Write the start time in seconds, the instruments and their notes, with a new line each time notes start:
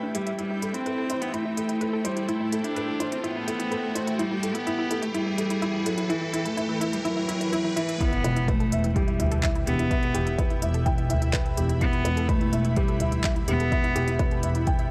Already playing: cello A3, ambient pad E4 E5 G5 B5, felt piano G4 B4 E5 G5, riser
0.03 synth arpeggio sound D4
0.14 cello G3, synth arpeggio sound E4, felt piano G4, closed hi-hat
0.27 synth arpeggio sound E5, closed hi-hat
0.38 cello G3, ambient pad A3, felt piano E4, synth arpeggio sound E4, closed hi-hat
0.51 synth arpeggio sound E4
0.62 synth arpeggio sound E4, felt piano A4, closed hi-hat
0.74 cello C4, synth arpeggio sound E4, closed hi-hat
0.86 felt piano A4, synth arpeggio sound B4, closed hi-hat
0.92 ambient pad A4
0.98 synth arpeggio sound A4
1.10 synth arpeggio sound E4, felt piano C5, closed hi-hat
1.21 cello B3, synth arpeggio sound E4, closed hi-hat
1.33 cello A3, synth arpeggio sound E4, felt piano E4, closed hi-hat
1.45 synth arpeggio sound E4
1.57 synth arpeggio sound E4, felt piano A4, closed hi-hat
1.69 synth arpeggio sound E4, closed hi-hat
1.81 felt piano A4, synth arpeggio sound B4, closed hi-hat
1.93 synth arpeggio sound A4
2.04 cello G3, synth arpeggio sound E4, felt piano C5, closed hi-hat
2.17 synth arpeggio sound E4, closed hi-hat
2.28 cello A3, synth arpeggio sound E4, felt piano E4, closed hi-hat
2.40 synth arpeggio sound E4
2.52 synth arpeggio sound E4, felt piano A4, closed hi-hat
2.64 cello D4, synth arpeggio sound E4, closed hi-hat
2.76 felt piano A4, synth arpeggio sound B4, closed hi-hat
2.88 synth arpeggio sound A4
3.00 synth arpeggio sound E4, felt piano C5, closed hi-hat
3.12 cello C4, synth arpeggio sound E4, closed hi-hat
3.24 cello B3, synth arpeggio sound E4, felt piano E4, closed hi-hat
3.36 synth arpeggio sound E4
3.47 synth arpeggio sound E4, felt piano A4, closed hi-hat
3.59 synth arpeggio sound E4, closed hi-hat
3.71 felt piano A4, synth arpeggio sound B4, closed hi-hat
3.83 synth arpeggio sound A4
3.95 cello A3, synth arpeggio sound E4, felt piano C5, closed hi-hat
4.07 synth arpeggio sound E4, closed hi-hat
4.19 ambient pad E3, cello G3, felt piano E4, synth arpeggio sound E4, closed hi-hat
4.31 synth arpeggio sound E4, ambient pad B4
4.43 synth arpeggio sound E4, felt piano A4, closed hi-hat
4.55 cello B3, synth arpeggio sound E4, closed hi-hat
4.67 synth arpeggio sound E4, felt piano E4, closed hi-hat
4.79 synth arpeggio sound E4
4.91 synth arpeggio sound E4, felt piano A4, closed hi-hat
5.02 cello A3, synth arpeggio sound E4, closed hi-hat
5.14 cello G3, synth arpeggio sound E4, felt piano E4, closed hi-hat
5.26 synth arpeggio sound E4
5.38 synth arpeggio sound E4, felt piano A4, closed hi-hat
5.50 synth arpeggio sound E4, closed hi-hat
5.62 synth arpeggio sound E4, felt piano E4, closed hi-hat
5.74 synth arpeggio sound E4
5.86 cello F#3, synth arpeggio sound E4, felt piano A4, closed hi-hat
5.98 synth arpeggio sound E4, closed hi-hat
6.10 cello E3, synth arpeggio sound E4, felt piano E4, closed hi-hat
6.22 synth arpeggio sound E4
6.33 synth arpeggio sound E4, felt piano E4, closed hi-hat
6.45 cello A3, synth arpeggio sound E4, closed hi-hat
6.57 synth arpeggio sound E4, felt piano E4, closed hi-hat
6.69 synth arpeggio sound E4
6.81 synth arpeggio sound E4, felt piano E4, closed hi-hat
6.93 cello G3, synth arpeggio sound E4, closed hi-hat
7.05 cello F#3, synth arpeggio sound E4, felt piano E4, closed hi-hat
7.17 synth arpeggio sound E4
7.28 synth arpeggio sound E4, felt piano E4, closed hi-hat
7.41 synth arpeggio sound E4, closed hi-hat
7.53 synth arpeggio sound E4, felt piano E4, closed hi-hat
7.65 synth arpeggio sound E4
7.76 cello E3, synth arpeggio sound E4, felt piano E4, closed hi-hat
7.89 synth arpeggio sound E4, closed hi-hat
8.01 cello B3, synth arpeggio sound E4, felt piano E4, ambient pad E4, kick, closed hi-hat, impact
8.09 synth arpeggio sound E4, ambient pad E5, closed hi-hat
8.24 double bass section E1, synth arpeggio sound E4, felt piano B4, closed hi-hat
8.36 synth arpeggio sound E4, closed hi-hat
8.48 cello A3, synth arpeggio sound B4, felt piano B4, kick, closed hi-hat
8.60 synth arpeggio sound A4, closed hi-hat
8.72 double bass section E1, synth arpeggio sound E4, felt piano E5, closed hi-hat
8.84 synth arpeggio sound E4, closed hi-hat
8.96 cello G3, synth arpeggio sound E4, felt piano G4, kick, closed hi-hat
9.08 synth arpeggio sound E4, closed hi-hat
9.20 double bass section D2, synth arpeggio sound E4, felt piano E5, closed hi-hat
9.24 ambient pad B5
9.32 synth arpeggio sound A4, closed hi-hat
9.43 synth arpeggio sound E4, felt piano E5, kick, clap, closed hi-hat
9.55 synth arpeggio sound E4, closed hi-hat
9.67 double bass section E1, cello B3, synth arpeggio sound E4, felt piano G4, closed hi-hat
9.79 synth arpeggio sound E4, closed hi-hat
9.91 synth arpeggio sound B4, felt piano E5, kick, closed hi-hat
10.03 synth arpeggio sound A4, closed hi-hat
10.14 double bass section E1, synth arpeggio sound E4, felt piano G4, closed hi-hat
10.27 synth arpeggio sound E4, closed hi-hat
10.38 synth arpeggio sound E4, felt piano B4, kick, closed hi-hat
10.50 synth arpeggio sound E4, closed hi-hat
10.62 double bass section E1, synth arpeggio sound E4, felt piano E5, closed hi-hat
10.74 synth arpeggio sound A4, closed hi-hat
10.86 synth arpeggio sound E4, felt piano G5, kick, closed hi-hat
10.98 synth arpeggio sound E4, closed hi-hat
11.10 double bass section D2, synth arpeggio sound E4, felt piano E5, closed hi-hat
11.22 synth arpeggio sound E4, closed hi-hat
11.33 felt piano B4, synth arpeggio sound B4, kick, clap, closed hi-hat
11.45 synth arpeggio sound A4, closed hi-hat
11.57 double bass section E1, synth arpeggio sound E4, felt piano G4, closed hi-hat
11.69 synth arpeggio sound E4, closed hi-hat
11.81 cello B3, synth arpeggio sound E4, felt piano E4, kick, closed hi-hat
11.93 synth arpeggio sound E4, closed hi-hat
12.05 double bass section E1, synth arpeggio sound E4, felt piano B4, closed hi-hat
12.17 synth arpeggio sound A4, closed hi-hat
12.28 cello A3, synth arpeggio sound E4, felt piano B4, kick, closed hi-hat
12.41 synth arpeggio sound E4, closed hi-hat
12.53 double bass section E1, synth arpeggio sound E4, felt piano E5, closed hi-hat
12.65 synth arpeggio sound E4, closed hi-hat
12.76 cello G3, felt piano G4, synth arpeggio sound B4, kick, closed hi-hat
12.88 synth arpeggio sound A4, closed hi-hat
13.00 double bass section D2, synth arpeggio sound E4, felt piano E5, closed hi-hat
13.12 synth arpeggio sound E4, closed hi-hat
13.24 synth arpeggio sound E4, felt piano E5, kick, clap, closed hi-hat
13.36 synth arpeggio sound E4, closed hi-hat
13.48 double bass section E1, cello B3, synth arpeggio sound E4, felt piano G4, closed hi-hat
13.60 synth arpeggio sound A4, closed hi-hat
13.72 synth arpeggio sound E4, felt piano E5, kick, closed hi-hat
13.84 synth arpeggio sound E4, closed hi-hat
13.95 double bass section E1, synth arpeggio sound E4, felt piano G4, closed hi-hat
14.08 synth arpeggio sound E4, closed hi-hat
14.19 felt piano B4, synth arpeggio sound B4, kick, closed hi-hat
14.31 synth arpeggio sound A4, closed hi-hat
14.43 double bass section E1, synth arpeggio sound E4, felt piano E5, closed hi-hat
14.55 synth arpeggio sound E4, closed hi-hat
14.67 synth arpeggio sound E4, felt piano G5, kick, closed hi-hat
14.79 synth arpeggio sound E4, closed hi-hat